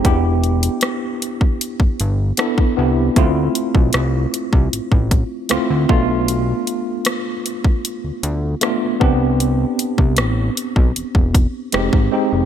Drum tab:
HH |x-xxx-x-x-x-x---|x-x-x-x-x-x-x---|x-x-x-x-x-x-x---|x-x-x-x-x-x-x---|
SD |----r-------r---|----r-------r---|----r-------r---|----r-------r---|
BD |o------o-o---o--|o--o---o-oo---o-|-------o------o-|---o---o-oo--o--|